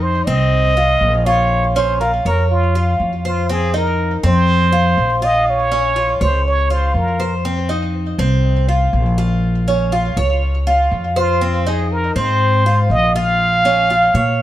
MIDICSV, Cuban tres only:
0, 0, Header, 1, 2, 480
1, 0, Start_track
1, 0, Key_signature, -4, "minor"
1, 0, Tempo, 495458
1, 1462, Time_signature, 4, 2, 24, 8
1, 13971, End_track
2, 0, Start_track
2, 0, Title_t, "Cuban tres"
2, 0, Program_c, 0, 25
2, 0, Note_on_c, 0, 63, 75
2, 248, Note_off_c, 0, 63, 0
2, 264, Note_on_c, 0, 60, 87
2, 728, Note_off_c, 0, 60, 0
2, 745, Note_on_c, 0, 65, 69
2, 1209, Note_off_c, 0, 65, 0
2, 1224, Note_on_c, 0, 65, 85
2, 1689, Note_off_c, 0, 65, 0
2, 1705, Note_on_c, 0, 61, 83
2, 1936, Note_off_c, 0, 61, 0
2, 1946, Note_on_c, 0, 65, 66
2, 2177, Note_off_c, 0, 65, 0
2, 2189, Note_on_c, 0, 73, 79
2, 2651, Note_off_c, 0, 73, 0
2, 2667, Note_on_c, 0, 65, 72
2, 3130, Note_off_c, 0, 65, 0
2, 3149, Note_on_c, 0, 72, 81
2, 3378, Note_off_c, 0, 72, 0
2, 3385, Note_on_c, 0, 60, 84
2, 3617, Note_off_c, 0, 60, 0
2, 3621, Note_on_c, 0, 63, 79
2, 4087, Note_off_c, 0, 63, 0
2, 4102, Note_on_c, 0, 60, 90
2, 4567, Note_off_c, 0, 60, 0
2, 4577, Note_on_c, 0, 65, 78
2, 5045, Note_off_c, 0, 65, 0
2, 5058, Note_on_c, 0, 65, 84
2, 5525, Note_off_c, 0, 65, 0
2, 5538, Note_on_c, 0, 61, 83
2, 5772, Note_off_c, 0, 61, 0
2, 5774, Note_on_c, 0, 65, 68
2, 6010, Note_off_c, 0, 65, 0
2, 6016, Note_on_c, 0, 73, 79
2, 6483, Note_off_c, 0, 73, 0
2, 6494, Note_on_c, 0, 65, 66
2, 6962, Note_off_c, 0, 65, 0
2, 6972, Note_on_c, 0, 72, 77
2, 7208, Note_off_c, 0, 72, 0
2, 7217, Note_on_c, 0, 60, 87
2, 7451, Note_off_c, 0, 60, 0
2, 7451, Note_on_c, 0, 63, 68
2, 7920, Note_off_c, 0, 63, 0
2, 7934, Note_on_c, 0, 60, 96
2, 8402, Note_off_c, 0, 60, 0
2, 8414, Note_on_c, 0, 65, 66
2, 8882, Note_off_c, 0, 65, 0
2, 8893, Note_on_c, 0, 65, 77
2, 9361, Note_off_c, 0, 65, 0
2, 9375, Note_on_c, 0, 61, 80
2, 9609, Note_off_c, 0, 61, 0
2, 9613, Note_on_c, 0, 65, 76
2, 9848, Note_off_c, 0, 65, 0
2, 9853, Note_on_c, 0, 73, 83
2, 10321, Note_off_c, 0, 73, 0
2, 10336, Note_on_c, 0, 65, 77
2, 10803, Note_off_c, 0, 65, 0
2, 10814, Note_on_c, 0, 72, 86
2, 11049, Note_off_c, 0, 72, 0
2, 11058, Note_on_c, 0, 60, 89
2, 11291, Note_off_c, 0, 60, 0
2, 11302, Note_on_c, 0, 63, 77
2, 11766, Note_off_c, 0, 63, 0
2, 11778, Note_on_c, 0, 60, 86
2, 12245, Note_off_c, 0, 60, 0
2, 12266, Note_on_c, 0, 65, 72
2, 12729, Note_off_c, 0, 65, 0
2, 12746, Note_on_c, 0, 65, 86
2, 13209, Note_off_c, 0, 65, 0
2, 13225, Note_on_c, 0, 61, 84
2, 13457, Note_off_c, 0, 61, 0
2, 13468, Note_on_c, 0, 65, 70
2, 13698, Note_off_c, 0, 65, 0
2, 13706, Note_on_c, 0, 73, 84
2, 13971, Note_off_c, 0, 73, 0
2, 13971, End_track
0, 0, End_of_file